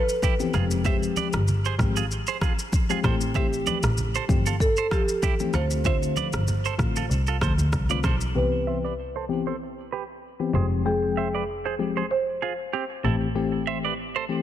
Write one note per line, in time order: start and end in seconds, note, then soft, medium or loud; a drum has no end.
0.00 0.88 B4 loud
0.09 shaker medium
0.22 0.34 E4 medium
0.22 0.34 G4 medium
0.22 kick medium
0.22 high conga medium
0.22 shaker medium
0.39 0.62 E3 medium
0.39 0.62 B3 medium
0.39 0.53 C4 medium
0.39 0.53 G4 medium
0.39 high conga medium
0.39 shaker soft
0.54 1.02 F1 loud
0.54 0.83 F3 medium
0.54 0.83 G#3 medium
0.54 0.83 C4 medium
0.54 0.65 F4 medium
0.54 0.83 G4 loud
0.54 0.65 G#4 medium
0.54 cross-stick medium
0.54 high conga medium
0.54 shaker medium
0.71 shaker medium
0.84 1.43 F3 medium
0.84 1.43 G#3 medium
0.84 1.43 C4 medium
0.84 1.43 G4 loud
0.84 2.69 G4 medium
0.84 0.97 C5 medium
0.84 0.96 E5 loud
0.84 kick loud
0.84 low conga medium
0.84 shaker medium
1.03 shaker medium
1.16 1.28 B4 medium
1.16 1.27 D5 medium
1.16 high conga medium
1.16 shaker medium
1.33 1.45 G1 medium
1.33 cross-stick loud
1.33 high conga medium
1.33 shaker medium
1.48 low conga medium
1.48 shaker medium
1.65 1.74 G#4 medium
1.65 1.74 C5 medium
1.65 shaker soft
1.79 2.16 G#1 loud
1.79 2.03 F3 medium
1.79 2.03 G#3 medium
1.79 2.03 C4 medium
1.79 2.03 G4 medium
1.79 kick loud
1.79 cross-stick loud
1.79 high conga medium
1.79 shaker medium
1.96 2.05 F4 medium
1.96 2.05 G#4 medium
1.96 shaker medium
2.11 shaker medium
2.27 2.37 G#4 medium
2.27 2.36 C5 medium
2.27 shaker medium
2.41 2.53 F4 medium
2.41 2.52 G#4 medium
2.41 kick loud
2.41 cross-stick loud
2.41 high conga medium
2.41 shaker medium
2.59 shaker medium
2.72 kick loud
2.72 high conga medium
2.72 shaker medium
2.90 3.12 F3 medium
2.90 3.12 G#3 medium
2.90 3.03 C4 medium
2.90 2.99 F4 medium
2.90 3.03 G4 medium
2.90 2.99 G#4 medium
2.90 high conga medium
2.90 shaker medium
3.04 3.65 A1 loud
3.04 3.33 E3 medium
3.04 3.33 A3 medium
3.04 3.33 C4 medium
3.04 3.33 G4 loud
3.04 3.15 A4 medium
3.04 3.15 C5 medium
3.04 kick medium
3.04 cross-stick medium
3.04 high conga medium
3.04 shaker medium
3.21 shaker medium
3.34 3.93 E3 medium
3.34 3.93 A3 medium
3.34 3.93 C4 medium
3.34 3.93 G4 loud
3.34 4.64 G4 medium
3.34 3.46 C5 medium
3.34 3.46 E5 loud
3.34 kick loud
3.34 low conga medium
3.34 shaker medium
3.53 shaker medium
3.66 3.78 B4 medium
3.66 3.77 D5 medium
3.66 high conga medium
3.66 shaker medium
3.83 3.94 A1 medium
3.83 cross-stick loud
3.83 high conga medium
3.83 shaker medium
3.98 low conga medium
3.98 shaker medium
4.15 4.24 A4 medium
4.15 4.24 C5 medium
4.15 shaker medium
4.29 4.66 G1 medium
4.29 4.53 E3 medium
4.29 4.53 A3 medium
4.29 4.53 C4 medium
4.29 4.53 G4 medium
4.29 kick loud
4.29 high conga medium
4.29 shaker medium
4.46 4.55 F4 medium
4.46 4.55 A4 medium
4.46 shaker medium
4.60 4.93 A4 loud
4.60 kick medium
4.60 shaker medium
4.77 4.87 A4 medium
4.77 4.86 C5 medium
4.77 shaker medium
4.91 5.03 F4 medium
4.91 5.56 G4 loud
4.91 5.02 A4 medium
4.91 kick loud
4.91 cross-stick medium
4.91 high conga medium
4.91 shaker medium
5.09 shaker medium
5.22 5.34 E4 medium
5.22 5.33 G4 medium
5.22 kick medium
5.22 high conga medium
5.22 shaker medium
5.40 5.62 E3 medium
5.40 5.53 A3 medium
5.40 5.53 C4 medium
5.40 5.62 G4 medium
5.40 high conga soft
5.40 shaker soft
5.54 6.02 D2 loud
5.54 5.83 D3 medium
5.54 5.83 A3 medium
5.54 5.83 C4 medium
5.54 5.83 F4 loud
5.54 5.65 F4 medium
5.54 5.65 A4 medium
5.54 5.85 C5 loud
5.54 cross-stick medium
5.54 high conga medium
5.54 shaker medium
5.71 shaker medium
5.84 6.43 D3 medium
5.84 6.43 A3 medium
5.84 6.43 C4 medium
5.84 6.43 F4 loud
5.84 6.75 C5 loud
5.84 5.96 C5 medium
5.84 5.96 E5 loud
5.84 kick loud
5.84 low conga medium
5.84 shaker medium
6.03 shaker medium
6.16 6.28 B4 medium
6.16 6.27 D5 medium
6.16 high conga medium
6.16 shaker medium
6.33 6.44 G1 medium
6.33 cross-stick loud
6.33 high conga medium
6.33 shaker medium
6.48 low conga medium
6.48 shaker medium
6.65 6.74 A4 medium
6.65 6.74 C5 medium
6.65 shaker soft
6.79 7.03 A1 loud
6.79 7.03 D3 medium
6.79 7.03 A3 medium
6.79 7.03 C4 medium
6.79 7.03 F4 medium
6.79 kick loud
6.79 cross-stick loud
6.79 high conga medium
6.79 shaker medium
6.96 7.06 F4 medium
6.96 7.05 A4 medium
6.96 shaker medium
7.10 7.23 C2 medium
7.10 shaker medium
7.27 7.37 F4 medium
7.27 7.36 A4 medium
7.27 shaker medium
7.41 7.55 D2 medium
7.41 7.53 A4 medium
7.41 7.52 C5 medium
7.41 kick loud
7.41 cross-stick loud
7.41 high conga medium
7.41 shaker medium
7.58 7.72 D2 medium
7.58 shaker medium
7.72 7.97 C2 medium
7.72 kick medium
7.72 cross-stick medium
7.72 high conga medium
7.72 shaker medium
7.89 8.12 D3 medium
7.89 8.12 A3 medium
7.89 8.12 C4 medium
7.89 8.12 F4 medium
7.89 7.99 B4 medium
7.89 7.99 D5 medium
7.89 high conga soft
7.89 shaker medium
8.04 8.28 B1 medium
8.04 8.15 A4 medium
8.04 8.15 C5 medium
8.04 kick medium
8.04 cross-stick loud
8.04 high conga medium
8.04 shaker medium
8.21 shaker medium
8.35 10.50 C2 medium
8.35 8.93 E3 medium
8.35 8.93 B3 medium
8.35 8.93 C4 medium
8.35 8.93 G4 loud
8.35 10.19 B4 loud
8.67 8.78 C5 medium
8.67 8.77 E5 medium
8.84 8.93 B4 medium
8.84 8.93 D5 medium
9.16 9.24 A4 medium
9.16 9.24 C5 medium
9.29 9.53 E3 medium
9.29 9.53 B3 medium
9.29 9.53 C4 medium
9.29 9.53 G4 medium
9.47 9.56 A4 medium
9.47 9.55 C5 medium
9.92 10.03 G4 medium
9.92 10.02 B4 medium
10.40 10.62 E3 medium
10.40 10.62 B3 medium
10.40 10.53 C4 medium
10.40 10.53 G4 medium
10.54 13.00 F1 medium
10.54 10.83 F3 medium
10.54 10.83 G#3 medium
10.54 10.83 C4 medium
10.54 10.83 G4 medium
10.54 10.65 G#4 medium
10.54 10.65 C5 medium
10.85 11.43 F3 medium
10.85 11.43 G#3 medium
10.85 11.43 C4 medium
10.85 12.14 G#4 medium
10.85 11.43 G5 loud
11.17 11.28 C5 medium
11.17 11.27 E5 medium
11.35 11.43 B4 medium
11.35 11.43 D5 medium
11.66 11.74 G#4 medium
11.66 11.74 C5 medium
11.79 12.03 F3 medium
11.79 12.03 G#3 medium
11.79 12.03 C4 medium
11.79 12.03 G4 medium
11.97 12.06 G#4 soft
11.97 12.05 C5 medium
12.11 13.00 C5 loud
12.42 12.53 F4 medium
12.42 12.52 G#4 medium
12.73 12.84 C4 medium
12.73 12.83 G4 medium
13.04 14.42 A1 medium
13.04 13.28 E3 medium
13.04 13.28 A3 medium
13.04 13.28 C4 medium
13.04 13.15 E4 medium
13.04 13.28 G4 medium
13.04 13.15 A4 medium
13.35 13.93 E3 medium
13.35 13.93 A3 medium
13.35 13.93 C4 medium
13.35 13.93 G4 loud
13.67 13.78 C5 medium
13.67 13.77 E5 medium
13.85 13.93 B4 medium
13.85 13.93 D5 medium
14.16 14.24 A4 medium
14.16 14.24 C5 medium
14.29 14.42 E3 medium
14.29 14.42 A3 medium
14.29 14.42 C4 medium
14.29 14.42 G4 medium